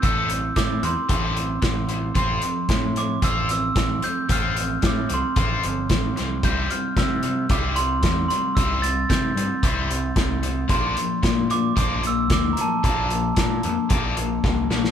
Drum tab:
HH |x-x-x-x-x-x-x-x-|x-x-x-x-x-x-x-x-|x-x-x-x-x-x-x-x-|x-x-x-x-x-x-x-x-|
SD |----o-------o---|----o-------o---|----o-------o-o-|----o-------o---|
BD |o---o---o---o---|o---o---o---o---|o---o---o---o---|o---o---o---o---|

HH |x-x-x-x-x-x-x-x-|x-x-x-x-x-x-x-x-|x-x-x-x-x-x-----|
SD |----o-------o---|----o-------o---|----o-------o-oo|
BD |o---o---o---o---|o---o---o---o---|o---o---o---o---|